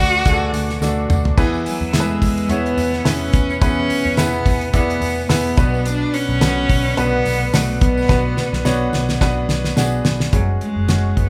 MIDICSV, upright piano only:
0, 0, Header, 1, 2, 480
1, 0, Start_track
1, 0, Tempo, 559701
1, 1182, Time_signature, 4, 2, 24, 8
1, 9682, End_track
2, 0, Start_track
2, 0, Title_t, "Upright piano"
2, 0, Program_c, 0, 0
2, 0, Control_c, 0, 64, 127
2, 0, Note_on_c, 0, 50, 62
2, 0, Note_on_c, 0, 57, 68
2, 0, Note_on_c, 0, 62, 64
2, 0, Note_on_c, 0, 66, 63
2, 0, Note_on_c, 0, 69, 77
2, 184, Note_off_c, 0, 57, 0
2, 186, Note_off_c, 0, 62, 0
2, 186, Note_off_c, 0, 66, 0
2, 186, Note_off_c, 0, 69, 0
2, 219, Note_on_c, 0, 57, 82
2, 221, Note_on_c, 0, 62, 77
2, 222, Note_on_c, 0, 66, 81
2, 223, Note_on_c, 0, 68, 73
2, 278, Note_on_c, 0, 69, 89
2, 285, Note_off_c, 0, 68, 0
2, 668, Note_off_c, 0, 57, 0
2, 669, Note_off_c, 0, 62, 0
2, 670, Note_off_c, 0, 66, 0
2, 691, Note_off_c, 0, 69, 0
2, 701, Note_on_c, 0, 57, 72
2, 702, Note_on_c, 0, 66, 60
2, 703, Note_on_c, 0, 62, 76
2, 704, Note_on_c, 0, 69, 75
2, 1149, Note_off_c, 0, 57, 0
2, 1149, Note_off_c, 0, 66, 0
2, 1150, Note_off_c, 0, 62, 0
2, 1150, Note_off_c, 0, 69, 0
2, 1177, Note_on_c, 0, 59, 90
2, 1179, Note_on_c, 0, 64, 79
2, 1180, Note_on_c, 0, 52, 80
2, 1180, Note_on_c, 0, 71, 90
2, 1182, Note_on_c, 0, 68, 89
2, 1191, Control_c, 0, 64, 0
2, 1198, Note_off_c, 0, 50, 0
2, 1359, Control_c, 0, 64, 127
2, 1627, Note_off_c, 0, 59, 0
2, 1628, Note_off_c, 0, 64, 0
2, 1628, Note_off_c, 0, 71, 0
2, 1629, Note_off_c, 0, 68, 0
2, 1654, Note_on_c, 0, 59, 70
2, 1655, Note_on_c, 0, 64, 63
2, 1657, Note_on_c, 0, 68, 67
2, 1660, Note_on_c, 0, 69, 61
2, 1715, Note_on_c, 0, 71, 74
2, 1723, Note_off_c, 0, 69, 0
2, 1867, Note_off_c, 0, 52, 0
2, 2105, Note_off_c, 0, 59, 0
2, 2106, Note_off_c, 0, 64, 0
2, 2107, Note_off_c, 0, 68, 0
2, 2136, Note_off_c, 0, 71, 0
2, 2137, Note_on_c, 0, 59, 72
2, 2139, Note_on_c, 0, 64, 70
2, 2141, Note_on_c, 0, 68, 63
2, 2143, Note_on_c, 0, 73, 81
2, 2587, Note_off_c, 0, 59, 0
2, 2588, Note_off_c, 0, 64, 0
2, 2589, Note_off_c, 0, 68, 0
2, 2590, Note_off_c, 0, 73, 0
2, 2615, Note_on_c, 0, 59, 65
2, 2615, Note_on_c, 0, 64, 61
2, 2616, Note_on_c, 0, 68, 55
2, 2616, Note_on_c, 0, 71, 69
2, 3066, Note_off_c, 0, 59, 0
2, 3066, Note_off_c, 0, 64, 0
2, 3066, Note_off_c, 0, 68, 0
2, 3066, Note_off_c, 0, 71, 0
2, 3099, Note_on_c, 0, 59, 79
2, 3100, Note_on_c, 0, 64, 71
2, 3100, Note_on_c, 0, 68, 74
2, 3101, Note_on_c, 0, 71, 85
2, 3102, Note_on_c, 0, 52, 71
2, 3548, Note_off_c, 0, 59, 0
2, 3548, Note_off_c, 0, 64, 0
2, 3548, Note_off_c, 0, 68, 0
2, 3549, Note_off_c, 0, 71, 0
2, 3579, Note_on_c, 0, 64, 70
2, 3580, Note_on_c, 0, 59, 76
2, 3582, Note_on_c, 0, 68, 64
2, 3582, Note_on_c, 0, 71, 76
2, 3787, Note_off_c, 0, 52, 0
2, 4028, Note_off_c, 0, 59, 0
2, 4028, Note_off_c, 0, 64, 0
2, 4029, Note_off_c, 0, 68, 0
2, 4029, Note_off_c, 0, 71, 0
2, 4057, Note_on_c, 0, 59, 79
2, 4060, Note_on_c, 0, 64, 67
2, 4061, Note_on_c, 0, 68, 63
2, 4062, Note_on_c, 0, 74, 74
2, 4507, Note_off_c, 0, 59, 0
2, 4508, Note_off_c, 0, 64, 0
2, 4508, Note_off_c, 0, 68, 0
2, 4509, Note_off_c, 0, 74, 0
2, 4536, Note_on_c, 0, 59, 63
2, 4537, Note_on_c, 0, 64, 62
2, 4538, Note_on_c, 0, 68, 58
2, 4539, Note_on_c, 0, 71, 76
2, 4764, Note_off_c, 0, 59, 0
2, 4767, Note_off_c, 0, 71, 0
2, 4776, Note_on_c, 0, 47, 69
2, 4777, Note_on_c, 0, 59, 72
2, 4778, Note_on_c, 0, 62, 68
2, 4778, Note_on_c, 0, 66, 77
2, 4779, Note_off_c, 0, 64, 0
2, 4779, Note_off_c, 0, 68, 0
2, 4780, Note_on_c, 0, 71, 79
2, 4790, Control_c, 0, 64, 0
2, 4934, Control_c, 0, 64, 127
2, 5450, Note_off_c, 0, 59, 0
2, 5450, Note_off_c, 0, 62, 0
2, 5451, Note_off_c, 0, 66, 0
2, 5451, Note_off_c, 0, 71, 0
2, 5464, Note_off_c, 0, 47, 0
2, 5499, Note_on_c, 0, 50, 70
2, 5499, Note_on_c, 0, 59, 67
2, 5500, Note_on_c, 0, 71, 82
2, 5501, Note_on_c, 0, 66, 69
2, 5947, Note_off_c, 0, 50, 0
2, 5947, Note_off_c, 0, 59, 0
2, 5948, Note_off_c, 0, 66, 0
2, 5948, Note_off_c, 0, 71, 0
2, 5978, Note_on_c, 0, 59, 70
2, 5979, Note_on_c, 0, 66, 63
2, 5980, Note_on_c, 0, 62, 74
2, 5980, Note_on_c, 0, 71, 92
2, 6427, Note_off_c, 0, 59, 0
2, 6427, Note_off_c, 0, 62, 0
2, 6427, Note_off_c, 0, 66, 0
2, 6427, Note_off_c, 0, 71, 0
2, 6459, Note_on_c, 0, 59, 62
2, 6459, Note_on_c, 0, 62, 61
2, 6460, Note_on_c, 0, 66, 61
2, 6463, Note_on_c, 0, 71, 73
2, 6699, Note_on_c, 0, 47, 59
2, 6907, Note_off_c, 0, 59, 0
2, 6907, Note_off_c, 0, 62, 0
2, 6908, Note_off_c, 0, 66, 0
2, 6909, Note_off_c, 0, 71, 0
2, 6934, Note_on_c, 0, 59, 80
2, 6938, Note_on_c, 0, 62, 70
2, 6938, Note_on_c, 0, 66, 75
2, 6939, Note_on_c, 0, 71, 83
2, 7384, Note_off_c, 0, 59, 0
2, 7385, Note_off_c, 0, 47, 0
2, 7386, Note_off_c, 0, 62, 0
2, 7387, Note_off_c, 0, 66, 0
2, 7387, Note_off_c, 0, 71, 0
2, 7415, Note_on_c, 0, 66, 85
2, 7416, Note_on_c, 0, 59, 96
2, 7416, Note_on_c, 0, 62, 83
2, 7418, Note_on_c, 0, 73, 93
2, 7865, Note_off_c, 0, 59, 0
2, 7865, Note_off_c, 0, 62, 0
2, 7865, Note_off_c, 0, 66, 0
2, 7867, Note_off_c, 0, 73, 0
2, 7897, Note_on_c, 0, 59, 90
2, 7899, Note_on_c, 0, 62, 86
2, 7901, Note_on_c, 0, 66, 78
2, 7901, Note_on_c, 0, 71, 90
2, 8346, Note_off_c, 0, 59, 0
2, 8347, Note_off_c, 0, 62, 0
2, 8348, Note_off_c, 0, 66, 0
2, 8348, Note_off_c, 0, 71, 0
2, 8373, Note_on_c, 0, 59, 78
2, 8374, Note_on_c, 0, 62, 71
2, 8376, Note_on_c, 0, 66, 65
2, 8376, Note_on_c, 0, 68, 78
2, 8824, Note_off_c, 0, 59, 0
2, 8825, Note_off_c, 0, 62, 0
2, 8825, Note_off_c, 0, 68, 0
2, 8826, Note_off_c, 0, 66, 0
2, 8855, Note_on_c, 0, 56, 59
2, 8857, Note_on_c, 0, 61, 60
2, 8859, Note_on_c, 0, 68, 74
2, 8860, Note_on_c, 0, 66, 63
2, 8872, Control_c, 0, 64, 0
2, 8996, Control_c, 0, 64, 127
2, 9305, Note_off_c, 0, 56, 0
2, 9306, Note_off_c, 0, 61, 0
2, 9307, Note_off_c, 0, 66, 0
2, 9307, Note_off_c, 0, 68, 0
2, 9337, Note_on_c, 0, 56, 59
2, 9337, Note_on_c, 0, 61, 55
2, 9337, Note_on_c, 0, 66, 55
2, 9339, Note_on_c, 0, 68, 70
2, 9682, Note_off_c, 0, 56, 0
2, 9682, Note_off_c, 0, 61, 0
2, 9682, Note_off_c, 0, 66, 0
2, 9682, Note_off_c, 0, 68, 0
2, 9682, End_track
0, 0, End_of_file